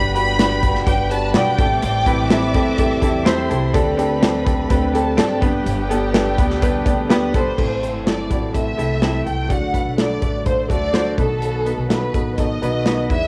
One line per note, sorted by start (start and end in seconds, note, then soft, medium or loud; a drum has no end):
0.00 0.83 G1 loud
0.00 0.59 G2 medium
0.00 1.54 D3 medium
0.00 0.38 G3 medium
0.00 1.55 G3 medium
0.00 1.54 B3 medium
0.00 0.10 D4 medium
0.00 0.38 D4 medium
0.00 1.57 D4 medium
0.00 0.11 F#4 medium
0.00 0.39 F#4 medium
0.00 0.11 G4 medium
0.00 0.11 B4 medium
0.00 0.40 B4 medium
0.00 0.85 B4 medium
0.00 0.85 G5 medium
0.00 0.13 B5 loud
0.14 0.34 D4 medium
0.14 0.35 F#4 medium
0.14 0.35 G4 medium
0.14 0.35 B4 medium
0.14 0.83 B5 loud
0.14 closed hi-hat medium
0.38 0.62 G3 medium
0.38 0.58 D4 medium
0.38 0.63 D4 medium
0.38 0.59 F#4 medium
0.38 0.62 F#4 medium
0.38 0.59 G4 medium
0.38 0.59 B4 medium
0.38 0.60 B4 medium
0.38 snare loud
0.38 closed hi-hat loud
0.61 0.82 D4 medium
0.61 0.86 D4 soft
0.61 0.86 F#4 soft
0.61 0.83 F#4 medium
0.61 0.83 G4 medium
0.61 0.86 B4 medium
0.61 0.83 B4 medium
0.61 kick medium
0.61 closed hi-hat medium
0.75 snare soft
0.86 1.31 G1 loud
0.86 1.33 G3 medium
0.86 1.06 D4 medium
0.86 1.34 D4 medium
0.86 1.06 F#4 medium
0.86 1.35 F#4 medium
0.86 1.07 G4 medium
0.86 1.57 B4 medium
0.86 1.07 B4 medium
0.86 1.35 B4 medium
0.86 1.09 G5 medium
0.86 1.57 B5 medium
0.86 kick medium
0.86 closed hi-hat medium
1.10 1.30 D4 medium
1.10 1.30 F#4 medium
1.10 1.31 G4 medium
1.10 1.31 B4 medium
1.10 1.35 A5 loud
1.10 closed hi-hat medium
1.34 1.57 B1 medium
1.34 1.58 G3 medium
1.34 1.54 D4 loud
1.34 1.59 D4 medium
1.34 1.54 F#4 medium
1.34 1.58 F#4 medium
1.34 1.55 G4 medium
1.34 1.57 B4 medium
1.34 1.55 D5 loud
1.34 1.80 G5 medium
1.34 snare loud
1.34 closed hi-hat medium
1.58 1.81 A1 medium
1.58 2.27 A2 medium
1.58 3.72 E3 medium
1.58 1.81 G3 soft
1.58 5.38 A3 medium
1.58 5.38 C4 medium
1.58 1.98 C4 medium
1.58 1.81 C4 soft
1.58 1.98 E4 medium
1.58 1.81 E4 medium
1.58 7.54 G4 medium
1.58 1.98 G4 medium
1.58 1.82 A4 medium
1.58 1.99 A4 medium
1.58 3.23 D5 medium
1.58 3.23 D6 medium
1.58 kick loud
1.58 closed hi-hat medium
1.81 2.51 A1 loud
1.81 2.30 A2 medium
1.81 2.30 E3 medium
1.81 2.29 G3 medium
1.81 2.30 C4 medium
1.81 2.30 E4 medium
1.81 2.32 A4 medium
1.81 2.28 G5 loud
1.81 closed hi-hat medium
2.06 2.26 C4 medium
2.06 2.26 E4 medium
2.06 2.26 G4 medium
2.06 2.27 B4 medium
2.06 kick medium
2.06 closed hi-hat medium
2.29 2.78 G3 medium
2.29 2.50 C4 medium
2.29 2.78 C4 medium
2.29 2.50 E4 medium
2.29 2.78 E4 medium
2.29 2.51 G4 medium
2.29 2.51 A4 medium
2.29 2.79 A4 medium
2.29 3.51 E5 medium
2.29 snare loud
2.29 closed hi-hat medium
2.54 2.99 E2 medium
2.54 2.74 C4 medium
2.54 2.74 E4 medium
2.54 2.74 G4 medium
2.54 2.75 A4 medium
2.54 kick medium
2.54 closed hi-hat medium
2.77 3.26 A2 medium
2.77 3.26 E3 medium
2.77 3.24 G3 medium
2.77 2.98 C4 medium
2.77 3.26 C4 medium
2.77 3.25 E4 loud
2.77 2.98 E4 medium
2.77 2.99 G4 medium
2.77 3.27 A4 loud
2.77 2.99 A4 medium
2.77 kick medium
2.77 closed hi-hat medium
3.02 3.47 E2 medium
3.02 3.22 C4 medium
3.02 3.22 E4 medium
3.02 3.22 G4 medium
3.02 3.23 A4 medium
3.02 kick medium
3.02 closed hi-hat medium
3.24 3.49 G3 medium
3.24 3.46 C4 loud
3.24 3.50 C4 medium
3.24 3.46 E4 loud
3.24 3.49 E4 medium
3.24 3.46 G4 loud
3.24 3.48 A4 medium
3.24 3.73 C5 medium
3.24 3.46 C5 loud
3.24 3.73 C6 medium
3.24 snare loud
3.24 closed hi-hat medium
3.49 3.73 C2 medium
3.49 3.70 C4 medium
3.49 3.73 C4 soft
3.49 3.70 E4 medium
3.49 3.74 E4 medium
3.49 3.70 G4 medium
3.49 3.74 A4 medium
3.49 3.70 A4 medium
3.49 closed hi-hat medium
3.73 4.66 D2 loud
3.73 4.25 D3 medium
3.73 7.54 D3 medium
3.73 4.42 D3 medium
3.73 4.20 A3 medium
3.73 3.94 C4 loud
3.73 4.21 C4 medium
3.73 3.94 D4 loud
3.73 3.94 G4 loud
3.73 4.23 G4 medium
3.73 3.95 A4 loud
3.73 4.23 A4 medium
3.73 4.92 B4 medium
3.73 4.92 B5 medium
3.73 kick loud
3.73 closed hi-hat medium
3.97 4.18 C4 loud
3.97 4.18 D4 loud
3.97 4.18 G4 medium
3.97 4.18 A4 loud
3.97 closed hi-hat medium
4.21 4.69 A3 medium
4.21 4.41 C4 medium
4.21 4.69 C4 medium
4.21 4.42 D4 medium
4.21 4.42 G4 medium
4.21 4.71 G4 medium
4.21 4.42 A4 medium
4.21 4.70 A4 medium
4.21 snare loud
4.21 closed hi-hat loud
4.45 4.65 C4 medium
4.45 4.65 D4 medium
4.45 4.66 G4 medium
4.45 4.66 A4 medium
4.45 kick loud
4.45 closed hi-hat medium
4.69 5.15 D2 loud
4.69 5.21 D3 medium
4.69 5.16 A3 medium
4.69 4.89 C4 medium
4.69 5.17 C4 medium
4.69 4.90 D4 medium
4.69 4.90 G4 medium
4.69 5.18 G4 loud
4.69 5.18 A4 loud
4.69 4.90 B4 medium
4.69 kick medium
4.69 closed hi-hat medium
4.93 5.14 C4 medium
4.93 5.14 D4 medium
4.93 5.14 G4 medium
4.93 5.41 A4 medium
4.93 5.14 A4 medium
4.93 5.41 A5 medium
4.93 closed hi-hat medium
5.17 5.41 G2 medium
5.17 5.42 A3 medium
5.17 5.37 C4 loud
5.17 5.42 C4 medium
5.17 5.38 D4 loud
5.17 5.38 G4 loud
5.17 5.41 G4 medium
5.17 5.38 A4 loud
5.17 5.41 A4 medium
5.17 snare loud
5.17 closed hi-hat medium
5.41 5.64 G1 medium
5.41 6.10 G2 medium
5.41 7.56 G3 medium
5.41 6.12 G3 medium
5.41 5.81 B3 medium
5.41 7.56 B3 medium
5.41 5.81 D4 medium
5.41 6.13 D4 medium
5.41 5.82 G4 medium
5.41 6.14 G4 medium
5.41 7.54 G4 medium
5.41 6.13 B4 medium
5.41 5.82 B4 loud
5.41 7.54 G5 medium
5.41 kick medium
5.41 closed hi-hat medium
5.66 6.34 G1 loud
5.66 closed hi-hat medium
5.89 6.09 B3 loud
5.89 6.10 D4 medium
5.89 6.10 G4 medium
5.89 6.10 A4 loud
5.89 closed hi-hat medium
6.13 6.38 G3 medium
6.13 6.34 B3 medium
6.13 6.34 D4 medium
6.13 6.38 D4 medium
6.13 6.34 G4 medium
6.13 6.38 G4 medium
6.13 6.34 A4 medium
6.13 6.36 B4 medium
6.13 snare loud
6.13 closed hi-hat medium
6.37 6.83 D2 medium
6.37 6.58 B3 medium
6.37 6.58 D4 medium
6.37 6.61 D4 soft
6.37 6.61 G4 soft
6.37 6.58 G4 medium
6.37 6.62 B4 medium
6.37 6.58 B4 medium
6.37 kick loud
6.37 closed hi-hat medium
6.50 snare soft
6.61 7.09 G3 medium
6.61 6.82 B3 medium
6.61 7.10 D4 medium
6.61 6.82 D4 medium
6.61 7.10 G4 medium
6.61 6.82 G4 medium
6.61 7.10 B4 loud
6.61 6.82 B4 medium
6.61 kick medium
6.61 closed hi-hat medium
6.85 7.30 D2 medium
6.85 7.05 B3 medium
6.85 7.06 D4 medium
6.85 7.06 G4 medium
6.85 7.06 D5 loud
6.85 kick medium
6.85 closed hi-hat medium
7.09 7.34 G3 medium
7.09 7.30 B3 loud
7.09 7.30 D4 loud
7.09 7.35 D4 medium
7.09 7.30 G4 loud
7.09 7.34 G4 medium
7.09 7.30 B4 loud
7.09 7.32 B4 medium
7.09 snare loud
7.09 closed hi-hat medium
7.33 7.56 G1 medium
7.33 7.54 B3 medium
7.33 7.54 D4 medium
7.33 7.59 D4 soft
7.33 7.54 G4 medium
7.33 7.58 G4 soft
7.33 7.54 A4 loud
7.33 7.58 B4 soft
7.33 8.02 C5 medium
7.33 kick medium
7.33 closed hi-hat medium
7.57 7.94 A1 medium
7.57 8.26 A2 soft
7.57 9.48 C3 soft
7.57 9.48 E3 soft
7.57 7.78 A3 medium
7.57 9.48 A3 soft
7.57 7.78 C4 medium
7.57 9.48 E4 medium
7.57 7.78 E4 medium
7.57 7.78 A4 medium
7.57 kick medium
7.57 crash medium
7.82 8.02 A3 medium
7.82 8.02 C4 medium
7.82 8.02 E4 soft
7.82 8.02 C5 medium
7.82 closed hi-hat medium
7.94 8.28 G1 medium
8.06 8.26 A3 medium
8.06 8.26 C4 medium
8.06 8.26 E4 medium
8.06 8.26 A4 medium
8.06 8.51 D5 medium
8.06 snare loud
8.06 closed hi-hat medium
8.29 8.75 A1 medium
8.29 8.49 A3 medium
8.29 8.50 C4 soft
8.29 8.50 E4 medium
8.29 8.50 F#4 medium
8.29 kick medium
8.29 closed hi-hat medium
8.53 8.73 A3 medium
8.53 8.74 C4 medium
8.53 8.74 E4 medium
8.53 8.74 A4 medium
8.53 9.23 E5 medium
8.53 kick medium
8.53 closed hi-hat medium
8.77 9.23 C2 medium
8.77 8.97 A3 medium
8.77 8.98 C4 medium
8.77 8.98 E4 medium
8.77 8.98 A4 medium
8.77 closed hi-hat medium
9.01 9.21 A3 medium
9.01 9.22 C4 medium
9.01 9.22 E4 medium
9.01 9.22 A4 medium
9.01 snare loud
9.01 closed hi-hat medium
9.25 9.49 C2 medium
9.25 9.45 A3 medium
9.25 9.45 C4 medium
9.25 9.46 E4 soft
9.25 9.46 A4 medium
9.25 9.51 G5 medium
9.25 closed hi-hat soft
9.49 9.83 D2 medium
9.49 10.18 D3 medium
9.49 11.16 D3 medium
9.49 13.07 F#3 soft
9.49 9.69 A3 medium
9.49 11.16 A3 soft
9.49 9.69 D4 medium
9.49 9.70 F#4 medium
9.49 13.06 F#4 medium
9.49 9.70 A4 medium
9.49 9.99 F#5 medium
9.49 kick medium
9.49 closed hi-hat medium
9.72 9.93 A3 medium
9.72 9.93 D4 soft
9.72 9.94 F#4 medium
9.72 9.94 B4 medium
9.72 kick medium
9.72 closed hi-hat medium
9.86 10.19 B1 medium
9.97 10.17 A3 medium
9.97 10.17 D4 medium
9.97 10.18 F#4 medium
9.97 10.18 A4 medium
9.97 10.43 D5 medium
9.97 snare loud
9.97 closed hi-hat medium
10.21 10.67 A1 medium
10.21 10.41 A3 medium
10.21 10.41 D4 medium
10.21 10.42 F#4 medium
10.21 10.42 A4 medium
10.21 kick medium
10.21 closed hi-hat medium
10.45 10.65 A3 medium
10.45 10.66 D4 medium
10.45 10.66 F#4 medium
10.45 10.66 C5 medium
10.45 10.70 C5 medium
10.45 kick medium
10.45 closed hi-hat medium
10.68 11.15 D2 medium
10.68 10.89 A3 medium
10.68 10.89 D4 medium
10.68 10.89 F#4 medium
10.68 10.90 A4 medium
10.68 11.15 D5 medium
10.68 kick medium
10.68 closed hi-hat medium
10.93 11.13 A3 medium
10.93 11.13 D4 medium
10.93 11.14 F#4 medium
10.93 11.14 C5 medium
10.93 snare loud
10.93 closed hi-hat medium
11.17 11.74 B1 medium
11.17 11.86 B2 soft
11.17 13.08 D#3 medium
11.17 11.57 B3 medium
11.17 13.28 B3 soft
11.17 11.57 D#4 medium
11.17 11.58 F#4 medium
11.17 11.86 A4 medium
11.17 11.58 B4 medium
11.17 kick medium
11.17 closed hi-hat soft
11.42 closed hi-hat medium
11.65 11.85 B3 medium
11.65 11.86 D#4 medium
11.65 11.86 F#4 medium
11.65 11.86 B4 medium
11.65 closed hi-hat medium
11.78 12.11 B1 medium
11.89 12.09 B3 medium
11.89 12.09 D#4 medium
11.89 12.10 F#4 medium
11.89 12.10 A4 medium
11.89 12.38 B4 medium
11.89 snare medium
11.89 closed hi-hat medium
12.13 12.59 A1 medium
12.13 12.33 B3 medium
12.13 12.34 D#4 medium
12.13 12.34 F#4 medium
12.13 12.34 A4 medium
12.13 kick medium
12.13 closed hi-hat medium
12.38 12.58 B3 medium
12.38 12.58 D#4 medium
12.38 12.58 F#4 medium
12.38 12.58 A4 medium
12.38 13.06 D#5 medium
12.38 kick medium
12.38 closed hi-hat medium
12.62 13.07 B1 medium
12.62 12.82 B3 medium
12.62 12.82 D#4 medium
12.62 12.82 F#4 medium
12.62 12.82 B4 medium
12.62 closed hi-hat medium
12.86 13.06 B3 medium
12.86 13.06 D#4 medium
12.86 13.06 F#4 medium
12.86 13.06 B4 loud
12.86 snare loud
12.86 closed hi-hat medium
13.10 13.28 E2 medium
13.10 13.28 D3 medium
13.10 13.28 E3 medium
13.10 13.28 G#3 medium
13.10 13.28 D4 medium
13.10 13.28 E4 medium
13.10 13.28 G#4 medium
13.10 13.28 B4 medium
13.10 13.28 E5 medium
13.10 kick medium
13.10 closed hi-hat soft